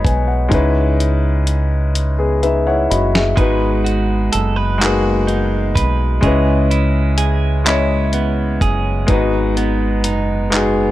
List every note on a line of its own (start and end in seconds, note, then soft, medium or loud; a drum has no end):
0.00 0.49 G#3 medium
0.00 0.54 B3 medium
0.00 0.51 D#4 medium
0.00 0.53 F#4 medium
0.00 0.53 C5 medium
0.00 0.53 C#5 medium
0.00 0.53 D#5 soft
0.00 0.53 B5 medium
0.04 0.48 B1 medium
0.04 0.27 B4 medium
0.04 0.27 G#5 medium
0.04 kick medium
0.04 closed hi-hat medium
0.28 0.73 F#5 medium
0.49 1.43 G#3 medium
0.49 1.43 C#4 medium
0.49 1.44 D#4 medium
0.49 1.45 E4 medium
0.49 kick loud
0.49 closed hi-hat medium
0.53 2.86 C#2 medium
0.53 1.45 B4 medium
1.00 closed hi-hat soft
1.47 closed hi-hat medium
1.95 closed hi-hat medium
2.19 2.41 B3 soft
2.19 2.41 G#4 medium
2.43 2.66 D#4 soft
2.43 2.65 B4 medium
2.43 2.65 E5 medium
2.43 closed hi-hat soft
2.67 2.89 E4 medium
2.67 2.89 C#5 medium
2.67 2.89 F#5 medium
2.90 3.34 F#1 medium
2.90 3.13 F#4 soft
2.90 3.13 D#5 soft
2.90 3.34 B5 medium
2.90 closed hi-hat medium
3.14 3.59 G#4 soft
3.14 3.59 E5 soft
3.14 snare medium
3.36 4.29 G#1 medium
3.36 4.29 G#3 medium
3.36 6.87 G#3 medium
3.36 4.30 B3 medium
3.36 4.31 D#4 medium
3.36 4.31 F#4 medium
3.36 4.32 B4 medium
3.36 kick loud
3.36 closed hi-hat medium
3.41 4.32 B4 medium
3.84 4.79 F#4 medium
3.84 closed hi-hat soft
4.32 5.72 F#1 medium
4.32 4.56 A4 medium
4.32 closed hi-hat medium
4.56 5.74 B4 medium
4.78 5.72 G#3 medium
4.78 4.86 A#3 medium
4.78 5.73 D#4 medium
4.78 6.33 F#4 medium
4.78 5.74 F#4 medium
4.78 closed hi-hat medium
4.82 5.75 B3 medium
4.82 5.75 G#4 medium
4.82 clap loud
5.27 6.32 D#4 medium
5.27 closed hi-hat soft
5.75 6.20 B1 medium
5.75 6.23 B4 medium
5.75 kick medium
5.75 closed hi-hat medium
6.21 8.58 C#2 medium
6.21 9.09 C#3 medium
6.21 7.14 G#3 medium
6.21 7.15 C#4 medium
6.21 7.17 G#4 medium
6.21 7.16 D#5 medium
6.21 kick loud
6.21 closed hi-hat medium
6.25 7.17 E4 medium
6.25 7.17 B4 medium
6.71 7.64 E4 medium
6.71 closed hi-hat soft
7.18 8.61 G#4 medium
7.18 closed hi-hat medium
7.64 8.58 G#3 medium
7.64 8.58 C#4 medium
7.64 9.09 E4 medium
7.64 8.59 D#5 medium
7.64 clap loud
7.64 closed hi-hat medium
7.69 8.60 E4 medium
7.69 8.60 C#5 medium
8.13 9.57 B3 medium
8.13 closed hi-hat soft
8.61 9.05 F#1 medium
8.61 10.91 G#4 medium
8.61 kick medium
8.61 closed hi-hat medium
9.07 10.06 G#1 loud
9.07 10.91 G#2 medium
9.07 10.00 G#3 medium
9.07 10.01 B3 medium
9.07 10.02 D#4 medium
9.07 10.03 D#4 medium
9.07 kick loud
9.07 closed hi-hat medium
9.11 10.02 F#4 medium
9.11 10.03 B4 medium
9.57 10.52 B3 medium
9.57 closed hi-hat soft
10.04 10.91 F#1 medium
10.04 10.91 D#4 medium
10.04 closed hi-hat medium
10.50 10.91 G#3 medium
10.50 10.91 B3 medium
10.50 10.91 D#4 medium
10.50 clap loud
10.50 closed hi-hat medium
10.54 10.91 F#4 medium
10.54 10.91 G#4 medium